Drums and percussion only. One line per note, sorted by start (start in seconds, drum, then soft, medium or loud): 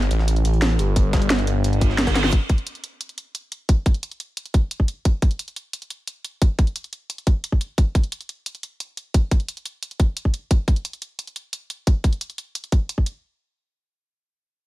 0.02 closed hi-hat soft
0.11 closed hi-hat medium
0.19 snare soft
0.28 closed hi-hat medium
0.36 closed hi-hat soft
0.45 closed hi-hat medium
0.54 closed hi-hat soft
0.62 snare loud
0.62 closed hi-hat medium
0.79 closed hi-hat medium
0.96 kick loud
0.96 closed hi-hat loud
0.96 closed hi-hat medium
1.13 kick loud
1.13 snare loud
1.13 closed hi-hat medium
1.22 closed hi-hat soft
1.30 snare loud
1.30 closed hi-hat medium
1.39 closed hi-hat soft
1.47 closed hi-hat medium
1.64 closed hi-hat loud
1.64 closed hi-hat medium
1.73 closed hi-hat soft
1.81 kick loud
1.81 closed hi-hat medium
1.90 snare soft
1.98 snare loud
1.98 closed hi-hat medium
2.07 kick medium
2.07 snare loud
2.07 closed hi-hat medium
2.15 snare medium
2.15 snare loud
2.15 closed hi-hat medium
2.24 snare medium
2.32 kick loud
2.32 closed hi-hat medium
2.49 kick loud
2.49 closed hi-hat medium
2.58 closed hi-hat soft
2.67 closed hi-hat medium
2.75 closed hi-hat soft
2.84 closed hi-hat medium
3.01 closed hi-hat medium
3.09 closed hi-hat soft
3.18 closed hi-hat medium
3.35 closed hi-hat medium
3.52 closed hi-hat medium
3.69 kick loud
3.69 closed hi-hat medium
3.86 kick loud
3.86 closed hi-hat medium
3.94 closed hi-hat soft
4.03 closed hi-hat medium
4.11 closed hi-hat soft
4.20 closed hi-hat medium
4.37 closed hi-hat medium
4.46 closed hi-hat soft
4.54 kick loud
4.54 closed hi-hat medium
4.71 closed hi-hat medium
4.80 kick medium
4.88 closed hi-hat medium
5.05 kick loud
5.05 closed hi-hat medium
5.22 kick loud
5.22 closed hi-hat medium
5.31 closed hi-hat soft
5.39 closed hi-hat medium
5.48 closed hi-hat soft
5.56 closed hi-hat medium
5.73 closed hi-hat medium
5.82 closed hi-hat soft
5.90 closed hi-hat medium
6.07 closed hi-hat medium
6.25 closed hi-hat medium
6.42 kick loud
6.42 closed hi-hat medium
6.59 kick loud
6.59 closed hi-hat medium
6.67 closed hi-hat soft
6.76 closed hi-hat medium
6.84 closed hi-hat soft
6.93 closed hi-hat medium
7.10 closed hi-hat medium
7.18 closed hi-hat soft
7.27 kick loud
7.27 closed hi-hat medium
7.44 closed hi-hat medium
7.52 kick medium
7.61 closed hi-hat medium
7.78 kick loud
7.78 closed hi-hat medium
7.95 kick loud
7.95 closed hi-hat medium
8.04 closed hi-hat soft
8.12 closed hi-hat medium
8.21 closed hi-hat soft
8.29 closed hi-hat medium
8.46 closed hi-hat medium
8.55 closed hi-hat soft
8.63 closed hi-hat medium
8.80 closed hi-hat medium
8.97 closed hi-hat medium
9.14 kick loud
9.14 closed hi-hat medium
9.31 kick loud
9.31 closed hi-hat medium
9.40 closed hi-hat soft
9.48 closed hi-hat medium
9.57 closed hi-hat soft
9.65 closed hi-hat medium
9.83 closed hi-hat medium
9.91 closed hi-hat soft
10.00 kick loud
10.00 closed hi-hat medium
10.17 closed hi-hat medium
10.25 kick medium
10.34 closed hi-hat medium
10.51 kick loud
10.51 closed hi-hat medium
10.68 kick loud
10.68 closed hi-hat medium
10.76 closed hi-hat soft
10.85 closed hi-hat medium
10.93 closed hi-hat soft
11.02 closed hi-hat medium
11.19 closed hi-hat medium
11.27 closed hi-hat soft
11.36 closed hi-hat medium
11.53 closed hi-hat medium
11.70 closed hi-hat medium
11.87 kick loud
11.87 closed hi-hat medium
12.04 kick loud
12.04 closed hi-hat medium
12.13 closed hi-hat soft
12.21 closed hi-hat medium
12.30 closed hi-hat soft
12.38 closed hi-hat medium
12.55 closed hi-hat loud
12.64 closed hi-hat soft
12.72 kick loud
12.72 closed hi-hat medium
12.89 closed hi-hat medium
12.98 kick medium
13.06 closed hi-hat medium